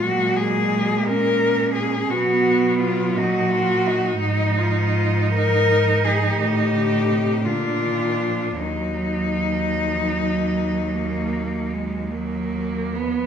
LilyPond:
<<
  \new Staff \with { instrumentName = "Cello" } { \time 12/8 \key ees \minor \tempo 4. = 55 ges'8 aes'4 bes'4 aes'8 fis'4 f'8 fis'4. | ees'8 f'4 bes'4 aes'8 g'4. f'4. | ees'1~ ees'8 r4. | }
  \new Staff \with { instrumentName = "Cello" } { \time 12/8 \key ees \minor ges4. des'4. b4. ees'8 f'8 ees'8~ | ees'1~ ees'8 d'4. | ges1~ ges8 bes4 ces'8 | }
  \new Staff \with { instrumentName = "Cello" } { \clef bass \time 12/8 \key ees \minor aes2. fis2. | f2. ees8 d8 c8 d8 ees8 f8 | ges4. f8 ges4 bes4 aes8 ges4 f8 | }
  \new Staff \with { instrumentName = "Cello" } { \clef bass \time 12/8 \key ees \minor bes,2. b,4. bes,4. | aes,2. a,4. bes,4. | ees,1~ ees,4. r8 | }
>>